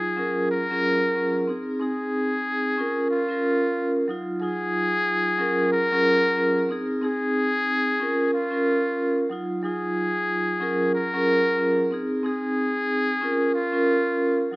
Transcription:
Already playing: F#3 D#4 F4 G#4
0.16 F#3 C#4 F4 G#4 A#4
0.51 A#4
0.70 F#3 C#4 F4 G#4 A#4
1.14 F#3 C#4 F4 G#4 A#4
1.47 C4 D#4 G#4
1.80 C4 D#4 G#4
2.78 C#4 F4 A#4
3.10 F4
3.29 C#4 F4 A#4
4.08 F#3 D#4 F4
4.41 F#3 D#4 F4 G#4
5.38 F#3 C#4 F4 G#4 A#4
5.72 A#4
5.92 F#3 C#4 F4 G#4 A#4
6.36 F#3 C#4 F4 G#4 A#4
6.69 C4 D#4 G#4
7.01 C4 D#4 G#4
8.00 C#4 F4 A#4
8.33 F4
8.51 C#4 F4 A#4
9.30 F#3 D#4 F4
9.62 F#3 D#4 F4 G#4
10.60 F#3 C#4 F4 G#4 A#4
10.95 A#4
11.14 F#3 C#4 F4 G#4 A#4
11.58 F#3 C#4 F4 G#4 A#4
11.91 C4 D#4 G#4
12.23 C4 D#4 G#4
13.21 C#4 F4 A#4
13.54 F4
13.72 C#4 F4 A#4
14.51 F#3 D#4

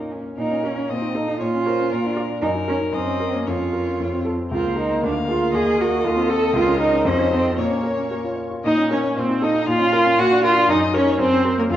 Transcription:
Already playing: A#2 A#3 C#4 D#4 F4 A#4
0.12 C#4
0.37 A#2 D#4 A#4
0.51 C#4
0.63 C#4 A#4
0.77 C#4
0.89 A#2 C4 D#5
1.02 D#4
1.14 D#4 A4
1.28 D#4
1.40 A#2 F4 C#5
1.54 C#4
1.65 A#4 C5 C#5
1.80 C#4
1.91 A#2 A#4
2.05 D4
2.16 A#4 D5
2.30 D4
2.42 F#2 D#4 A#4
2.55 D#4
2.67 C#4 A#4
2.81 D#4
2.92 F#2 C4 D#5
3.06 C#4
3.20 A#4
3.33 A#3 C#4
3.47 F2 F4 C#5
3.59 C#4
3.73 A#4
3.87 C#4
4.00 F2
4.12 C4
4.25 A4
4.38 C4
4.51 C#2 F4 A#4 C5
4.63 A#3
4.76 D#4 A#4
4.89 A#3
5.01 D2 D4 A#4 F5
5.15 A#3
5.28 F4 G#4
5.40 A#3
5.53 D#2 G#4 A#4 D#5
5.65 A#3
5.78 F#4 A#4
5.91 A#3
6.04 D#2 F4 A4
6.16 C4
6.28 A4
6.41 C4
6.53 C#2 F4 A#4
6.66 C#4
6.78 D#4 A#4
6.92 C#4
7.04 F2 C#4 C5 D#5
7.18 D#4
7.31 C4 A4
7.44 D#4
7.57 A#2 A#3 C#5
7.70 C#4
7.83 A#4
7.97 C#4
8.11 A#4
8.24 F4
8.36 C#5
8.50 F4
8.64 A#2 D#4 D#5
8.77 C#4
8.90 C#4 A#4 C#5
9.04 C#4
9.16 A#2 C4 C5
9.29 D#4
9.42 D#4 A4 D#5
9.54 D#4
9.67 A#2 F4 F5
9.80 C#4
9.93 A#4
10.05 C#4
10.18 A#2 F#4 F#5
10.31 D4
10.43 F4 A#4 F5
10.55 D4
10.68 F#2 D#4 D#5
10.80 D#4
10.93 C#4 A#4 C#5
11.06 D#4
11.19 F#2 C4 C5
11.32 C#4
11.45 A#4
11.58 A#3 C#4 A#4
11.70 F2 F4 F5

